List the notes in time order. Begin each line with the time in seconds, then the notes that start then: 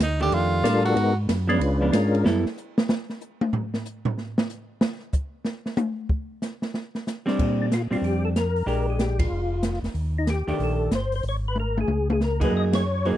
0.00 D2 D#4, snare, hi-hat pedal, ride
0.20 D#3 A3 D4 G4, ride
0.31 F2 F4, ride
0.63 A2 G3 D4 F4 A4 A#4, snare, hi-hat pedal, ride
0.85 F#4, ride
0.95 G#2 G#3 B3 D#4 F#4 A#4, ride
1.29 F#2, snare, hi-hat pedal, ride
1.47 F3 G#3 B3 C#4 D4 F4 B4, ride
1.60 C#2, ride
1.81 F3 B3 D4
1.92 G#2 G#3 C#4 D4 F4 A#4, snare, hi-hat pedal, ride
2.15 ride
2.24 F#2 G3 B3 E4 A4, snare
2.46 snare
2.57 hi-hat pedal
2.78 snare
2.89 snare
3.10 snare
3.21 hi-hat pedal
3.41 high tom
3.53 floor tom
3.74 snare
3.85 hi-hat pedal
4.05 floor tom
4.18 snare
4.38 snare
4.49 hi-hat pedal
4.81 snare
5.13 kick, hi-hat pedal
5.45 snare
5.66 snare
5.77 hi-hat pedal, high tom
6.09 kick
6.42 snare, hi-hat pedal
6.62 snare
6.74 snare
6.95 snare
7.07 snare, hi-hat pedal
7.26 G3 C4 D4, snare
7.39 A#2, kick, crash
7.62 D4
7.72 F4, snare, closed hi-hat
7.91 A#2 G3 C4 D4 F4, open hi-hat
8.02 F2 G4, open hi-hat
8.25 A4
8.36 A#4, snare, closed hi-hat
8.56 open hi-hat
8.66 A#1 G#3 D4 G4 A#4, open hi-hat
8.90 G#4
8.99 G4, snare, closed hi-hat
9.19 F4, kick, ride
9.30 F1
9.63 snare, closed hi-hat
9.74 snare
9.83 F1, snare, open hi-hat
9.94 D#2, open hi-hat
10.18 D#4
10.27 G4, snare, closed hi-hat
10.47 D#2 D#3 A3 D4 G4, open hi-hat
10.59 A#1, open hi-hat
10.64 A4
10.91 G1 C5, snare, closed hi-hat
11.12 C5, open hi-hat
11.23 G#1, open hi-hat
11.29 C#5
11.48 B4
11.55 high tom
11.60 A#4
11.77 G#4, high tom
11.87 C#2, high tom
12.10 G#4, high tom
12.21 A#4, snare
12.40 F#3 A#3 D#4 G#4 B4, kick, crash
12.51 F#2
12.57 D#5
12.73 C#5, snare, ride
13.05 F#3 A#3 D#4 G#4 C5, open hi-hat